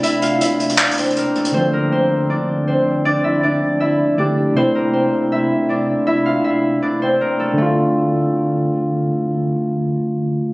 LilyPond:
<<
  \new Staff \with { instrumentName = "Harp" } { \time 4/4 \key d \minor \tempo 4 = 159 <e' e''>8 <f' f''>8 <e' e''>4 <d' d''>8 <c' c''>8 <bes bes'>8 <a a'>8 | <c' c''>8 <bes bes'>8 <c' c''>4 <d' d''>4 <c' c''>4 | <d' d''>8 <e' e''>8 <d' d''>4 <e' e''>4 <d' d''>4 | <c' c''>8 <bes bes'>8 <c' c''>4 <e' e''>4 <d' d''>4 |
<e' e''>8 <f' f''>8 <e' e''>4 <d' d''>8 <c' c''>8 <bes bes'>8 <a a'>8 | a2. r4 | r1 | }
  \new Staff \with { instrumentName = "Tine electric piano" } { \time 4/4 \key d \minor <c a e'>1 | <d f a>1~ | <d f a>2. <d a g'>4 | <c a e'>1~ |
<c a e'>1 | <d a f'>1~ | <d a f'>1 | }
  \new DrumStaff \with { instrumentName = "Drums" } \drummode { \time 4/4 hh8 hh8 hh8 hh16 hh16 \tuplet 3/2 { <hc hh>16 hh16 hh16 hh16 hh16 hh16 } hh8 hh16 hh16 | r4 r4 r4 r4 | r4 r4 r4 r4 | r4 r4 r4 r4 |
r4 r4 r4 r4 | r4 r4 r4 r4 | r4 r4 r4 r4 | }
>>